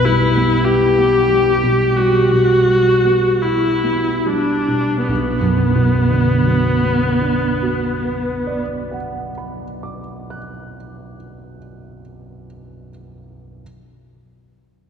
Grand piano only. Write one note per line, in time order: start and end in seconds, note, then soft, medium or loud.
0.00 5.05 B1 soft
0.00 0.24 B2 soft
0.05 0.54 G3 soft
0.36 0.85 B3 soft
0.67 1.17 E4 soft
0.99 1.50 B3 soft
1.30 1.83 G3 soft
1.64 2.17 B2 soft
1.98 2.53 G3 soft
2.32 2.90 B2 soft
2.68 3.27 G3 soft
3.05 3.67 B3 soft
3.43 4.08 E4 soft
3.83 4.52 B3 soft
4.26 4.93 G3 soft
4.68 5.09 B2 soft
5.09 8.62 B1 soft
5.41 8.94 F#2 soft
5.76 9.29 B2 soft
6.10 9.64 D3 soft
6.46 9.99 F#3 soft
6.83 10.36 B3 soft
7.21 10.75 D4 soft
7.62 11.16 F#4 soft
8.04 11.57 B4 soft
8.47 12.00 D5 soft
8.91 12.45 F#5 soft
9.38 12.90 B5 soft
9.83 12.90 D6 soft
10.30 12.90 F#6 soft